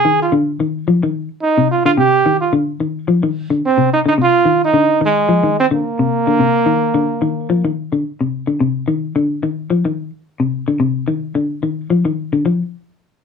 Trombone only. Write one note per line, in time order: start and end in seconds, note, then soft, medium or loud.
0.00 0.17 G#4 loud
0.22 0.34 F4 medium
1.42 1.68 D#4 loud
1.71 1.85 F4 medium
1.86 1.91 F4 loud
1.97 2.37 G4 loud
2.41 2.53 F4 medium
3.66 3.91 C4 loud
3.94 4.00 D#4 loud
4.08 4.13 D#4 loud
4.23 4.60 F4 loud
4.64 5.00 D#4 loud
5.05 5.55 G#3 loud
5.60 5.66 C4 loud
5.74 7.74 A#3 loud